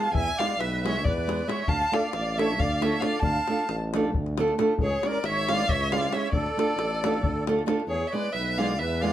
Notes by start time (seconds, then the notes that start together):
Already playing: F5 A5
0.12 E2 E5 G#5, davul low
0.28 davul high
0.36 G#3 B3 D5 F5, davul high
0.41 E4 G#4
0.50 davul high
0.58 B1 B4 E5, davul high
0.73 davul high
0.84 G#3 B3 E4 G#4 C#5 E5, davul high
0.95 davul high
1.04 E2 B4 D5, davul low
1.17 davul high
1.27 G#3 B3 E4 G#4, davul high
1.39 davul high
1.47 G#3 B3 E4 G#4 C#5 E5, davul high
1.59 davul high
1.67 D2 F5 A5, davul low
1.92 A3 D4 F4 A4 D5 F5, davul high
2.03 davul high
2.13 A1 D5 F5, davul high
2.27 davul high
2.37 A3 D4 F4 A4 C#5 E5, davul high
2.51 davul high
2.59 D2 D5 F5, davul low
2.71 davul high
2.81 A3 D4 F4 A4 C#5 E5, davul high
2.92 davul high
3.00 A3 D4 F4 A4 D5 F5, davul high
3.19 D2 A5, davul low
3.23 F5
3.48 A3 D4 F4 A4, davul high
3.59 davul high
3.69 A1, davul high
3.94 A3 D4 F4 A4, davul high
4.05 davul high
4.14 D2, davul low
4.26 davul high
4.38 A3 D4 F4 A4, davul high
4.48 davul high
4.58 A3 D4 F4 A4, davul high
4.78 C#2 G#4, davul low
4.83 C#5
5.03 G#3 C#4 E4 G#4 A#4 D5, davul high
5.14 davul high
5.23 G#1 E5, davul high
5.28 C#5
5.36 davul high
5.49 G#3 C#4 E4 G#4 F5, davul high
5.53 D5
5.59 davul high
5.69 C#2 C#5 E5, davul low
5.80 davul high
5.92 G#3 C#4 E4 G#4 D5 F5, davul high
6.03 davul high
6.12 G#3 C#4 E4 G#4 C#5 E5, davul high
6.31 D2 A4 D5, davul low
6.46 davul high
6.57 A3 D4 F4 A4, davul high
6.70 davul high
6.76 A1, davul high
6.92 davul high
7.04 A3 D4 F4 A4, davul high
7.14 davul high
7.23 D2, davul low
7.47 A3 D4 F4 A4, davul high
7.59 davul high
7.66 A3 D4 F4 A4, davul high
7.80 davul high
7.87 E2 G#4 C#5
8.07 C#5 E5
8.12 G#3 B3 E4 G#4 B4 D5
8.32 B1 B4 E5
8.58 G#3 B3 E4 G#4 D5 F5
8.78 E2 B4 E5
9.00 G#3 B3 E4 G#4 D5 F5